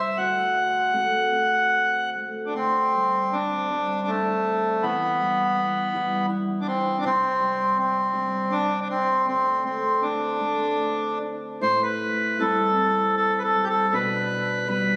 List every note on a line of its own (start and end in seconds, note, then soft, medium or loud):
0.00 0.16 C3 medium
0.00 0.24 G3 soft
0.00 0.17 E4 medium
0.00 0.18 E5 medium
0.17 2.53 D2 medium
0.17 0.93 F#4 medium
0.17 2.10 F#5 medium
0.93 2.15 A3 medium
0.93 1.32 C4 medium
0.93 2.55 F#4 medium
1.32 3.32 C4 soft
2.15 2.94 A3 soft
2.46 2.54 D4 soft
2.55 4.83 D2 medium
2.55 3.35 C4 medium
2.55 3.71 D4 soft
2.95 3.70 G3 soft
3.33 3.71 C4 medium
3.33 4.11 D4 medium
3.71 5.19 G3 soft
3.71 4.91 C4 medium
3.71 4.08 D4 soft
4.07 4.85 A3 medium
4.07 4.83 D4 medium
4.83 7.07 E3 medium
4.83 6.26 B3 medium
4.83 5.95 E4 medium
5.20 5.94 G3 medium
5.57 5.94 B3 medium
5.95 7.40 G3 medium
5.95 6.29 E4 medium
6.30 7.04 E4 medium
6.61 6.67 D4 medium
6.68 6.98 C4 medium
6.98 7.05 D4 medium
7.03 9.26 C3 medium
7.03 7.78 C4 loud
7.03 8.14 D4 medium
7.41 8.12 G3 medium
7.77 8.14 C4 medium
7.77 8.54 C4 medium
8.14 9.33 G3 soft
8.14 10.01 C4 soft
8.14 8.50 D4 medium
8.50 9.25 D4 medium
8.50 8.80 D4 medium
8.81 8.88 D4 medium
8.90 9.27 C4 medium
9.25 11.62 D2 medium
9.25 9.64 C4 medium
9.25 10.39 D4 medium
9.64 10.39 A3 medium
9.64 10.04 C4 medium
10.01 10.39 C4 soft
10.01 11.19 D4 medium
10.39 12.39 A3 soft
10.39 12.39 C4 soft
10.39 10.79 D4 medium
10.80 11.61 D4 soft
11.61 13.92 A2 medium
11.61 12.39 E4 medium
11.61 11.82 C5 medium
11.83 12.43 B4 medium
12.39 13.55 G3 medium
12.39 12.76 C4 medium
12.39 13.92 E4 medium
12.39 13.15 A4 medium
12.78 14.00 C4 medium
13.17 13.39 A4 medium
13.39 13.43 B4 medium
13.43 13.65 A4 medium
13.55 14.67 G3 soft
13.64 13.68 G4 medium
13.69 13.94 A4 medium
13.92 14.96 B2 medium
13.92 14.67 D4 medium
13.92 14.68 B4 medium
14.67 14.96 G3 medium
14.67 14.96 B3 medium
14.67 14.96 D4 medium
14.67 14.96 B4 medium